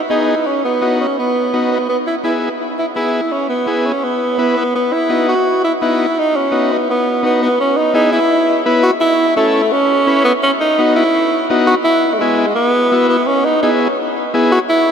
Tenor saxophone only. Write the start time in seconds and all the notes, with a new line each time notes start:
0.10 D#4
0.47 C#4
0.65 B3
1.00 C#4
1.19 B3
1.72 B3
1.89 B3
2.07 E4
2.24 E4
2.79 E4
2.96 E4
3.32 C#4
3.49 B3
3.86 C#4
4.04 B3
4.57 B3
4.75 B3
4.93 E4
5.28 F#4
5.64 E4
5.82 E4
6.19 D#4
6.36 C#4
6.72 B3
6.90 B3
7.25 B3
7.42 B3
7.60 C#4
7.77 D#4
7.95 D#4
8.12 E4
8.83 F#4
9.00 E4
9.36 A3
9.72 C#4
10.24 B3
10.43 C#4
10.60 D#4
10.96 E4
11.67 F#4
11.84 E4
12.13 A3
12.19 G#3
12.55 B3
13.09 B3
13.27 C#4
13.45 D#4
13.62 D#4
14.52 F#4
14.69 E4